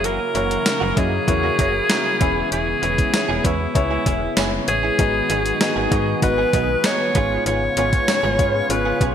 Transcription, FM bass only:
0.00 0.19 F#1 loud
0.35 0.58 F#1 medium
0.82 0.93 F#1 loud
0.97 1.20 F#2 loud
1.28 1.51 E2 medium
1.59 1.82 F#1 loud
2.21 2.44 E1 loud
2.52 2.75 E1 medium
2.83 3.06 E1 medium
3.29 3.41 E1 loud
3.44 3.68 E2 loud
3.75 3.98 C#2 loud
4.06 4.29 E1 medium
4.37 4.60 F#1 medium
4.68 4.91 A1 medium
4.99 5.22 G#1 loud
5.30 5.53 G#1 loud
5.76 5.88 G#1 medium
5.92 6.15 G#2 loud
6.22 6.46 G#1 loud
6.53 6.77 B1 loud
7.15 7.38 G#1 loud
7.46 7.69 G#1 loud
7.77 8.00 G#1 loud
8.23 8.41 G#1 loud
8.39 8.62 G#2 loud
8.70 8.93 G#1 medium
9.01 9.15 B1 loud

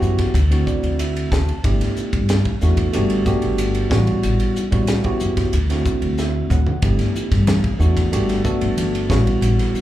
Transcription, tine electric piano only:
0.00 0.35 B3 medium
0.00 0.35 C#4 medium
0.00 0.35 E4 medium
0.00 0.35 F#4 medium
0.00 0.34 G4 medium
0.50 1.53 A3 medium
0.50 1.53 C4 medium
0.50 1.53 D4 medium
0.50 1.53 E4 medium
0.50 1.54 F#4 medium
0.67 0.97 D5 medium
1.00 1.30 E5 medium
1.32 1.62 A5 medium
1.63 2.51 A3 medium
1.63 2.52 B3 medium
1.63 2.52 D4 medium
1.63 2.52 E4 medium
1.63 2.52 G4 medium
2.62 2.91 A3 medium
2.62 2.91 B3 medium
2.62 2.91 D4 medium
2.62 2.91 E4 medium
2.62 2.92 F#4 medium
2.93 3.22 A3 medium
2.93 3.23 B3 medium
2.93 3.23 D4 medium
2.93 3.23 F#4 medium
2.93 3.24 G4 medium
3.25 3.91 A3 medium
3.25 3.89 B3 medium
3.25 3.91 D4 medium
3.25 3.90 F#4 medium
3.25 3.91 G4 loud
3.89 4.63 G3 medium
3.89 4.63 B3 medium
3.89 4.63 C#4 medium
3.89 4.64 E4 medium
3.89 4.64 F#4 medium
4.71 5.01 G3 medium
4.71 5.01 B3 medium
4.71 5.01 C#4 medium
4.71 5.01 E4 medium
4.71 5.02 F#4 medium
5.04 5.53 B3 medium
5.04 5.53 C#4 medium
5.04 5.53 E4 medium
5.04 5.53 F#4 medium
5.04 5.53 G4 medium
5.69 6.71 A3 medium
5.69 6.71 C4 medium
5.69 6.71 D4 medium
5.69 6.72 E4 medium
5.69 6.72 F#4 medium
6.19 6.49 E5 medium
6.51 6.81 F#5 medium
6.82 7.70 A3 medium
6.82 7.70 B3 medium
6.82 7.70 D4 medium
6.82 7.71 E4 medium
6.82 7.71 G4 medium
7.79 8.08 A3 medium
7.79 8.09 B3 medium
7.79 8.09 D4 medium
7.79 8.09 E4 medium
7.79 8.09 F#4 medium
8.12 8.41 A3 medium
8.12 8.41 B3 medium
8.12 8.41 D4 medium
8.12 8.42 F#4 medium
8.12 8.42 G4 medium
8.44 9.09 A3 medium
8.44 9.08 B3 medium
8.44 9.09 D4 medium
8.44 9.09 F#4 medium
8.44 9.10 A4 medium
9.09 9.81 G3 medium
9.09 9.81 B3 medium
9.09 9.81 C#4 medium
9.09 9.81 E4 medium
9.09 9.81 F#4 medium

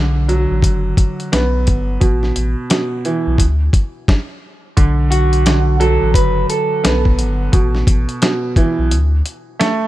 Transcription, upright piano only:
0.00 2.03 D3 medium
0.28 2.01 F#3 medium
1.32 2.01 B3 loud
2.00 2.68 B2 medium
2.70 3.39 B2 medium
3.05 3.40 E3 medium
4.77 5.46 D3 medium
5.48 7.54 D3 medium
5.80 7.53 F#3 loud
6.84 7.53 B3 loud
7.52 8.20 B2 medium
8.22 8.91 B2 medium
8.57 8.91 E3 loud
9.59 9.88 A3 loud

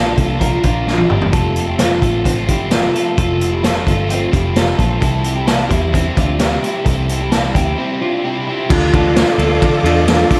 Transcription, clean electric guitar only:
0.00 0.16 F4 medium
0.00 0.16 A4 medium
0.17 0.40 F4 medium
0.17 0.39 A4 medium
0.40 0.62 F4 medium
0.40 0.64 A#4 medium
0.63 0.86 D4 medium
0.63 0.86 F4 medium
0.87 1.11 D4 medium
0.87 1.09 F4 medium
1.09 1.32 E4 medium
1.09 1.33 G4 medium
1.32 1.66 F4 medium
1.32 1.66 A4 loud
1.67 1.79 E4 medium
1.67 1.79 G4 medium
1.80 2.01 F4 medium
1.80 2.00 A4 medium
2.01 2.24 F4 medium
2.01 2.25 A4 medium
2.25 2.49 C4 medium
2.25 2.48 F4 medium
2.48 2.71 E4 medium
2.48 2.72 G4 medium
2.71 2.94 F4 medium
2.71 2.93 A4 medium
2.94 3.18 F4 soft
2.94 3.17 A4 medium
3.18 3.51 F4 medium
3.18 3.50 A4 medium
3.52 3.63 E4 medium
3.52 3.64 G4 medium
3.64 3.87 F4 medium
3.64 3.86 A4 medium
3.87 4.09 F4 medium
3.87 4.10 A4 medium
4.10 4.33 C4 medium
4.10 4.32 F4 medium
4.33 4.56 E4 medium
4.33 4.56 G4 medium
4.56 4.78 F4 medium
4.56 4.77 A4 medium
4.79 5.02 F4 medium
4.79 5.00 A4 medium
5.01 5.34 E4 medium
5.01 5.34 A4 medium
5.36 5.46 E4 medium
5.36 5.47 G4 medium
5.47 5.69 E4 medium
5.47 5.69 A4 medium
5.69 5.91 E4 medium
5.69 5.92 G4 medium
5.92 6.17 C4 medium
5.92 6.16 E4 medium
6.16 6.40 D4 medium
6.16 6.39 F4 medium
6.39 6.62 E4 medium
6.39 6.61 G4 medium
6.62 6.84 E4 medium
6.62 6.85 G4 medium
6.85 7.18 E4 medium
6.85 7.18 A4 loud
7.20 7.31 E4 medium
7.20 7.32 G4 medium
7.31 7.55 E4 medium
7.31 7.55 A4 medium
7.55 7.77 E4 medium
7.55 7.77 G4 medium
7.78 8.01 C4 medium
7.78 8.01 E4 medium
8.01 8.24 D4 medium
8.01 8.24 F4 medium
8.24 8.46 E4 medium
8.24 8.46 G4 medium
8.47 8.70 E4 medium
8.47 8.69 G4 medium
8.70 8.93 D4 medium
8.70 8.92 F4 loud
8.93 9.36 F4 medium
8.93 9.36 A4 medium
9.39 9.82 F4 medium
9.39 9.82 A4 medium
9.84 10.28 D4 medium
9.84 10.28 F4 medium
10.30 10.40 D4 medium
10.30 10.40 F4 medium

